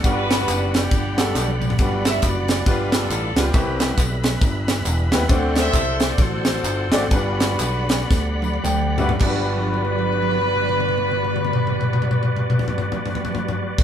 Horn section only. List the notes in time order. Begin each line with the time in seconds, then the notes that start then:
0.05 D4 F#4 B4
0.73 B3 D4 G4
1.25 A4
1.34 B3 D4 G4
2.07 E5
2.25 F#4 B4 D5
2.69 D4 F4 B4
2.95 D4 F4 A4
3.39 B3 E4 G4
5.57 A4 C5 E5
6.11 D5
6.18 F#4 A4 C5
7.13 D4 F#4 B4
9.22 B4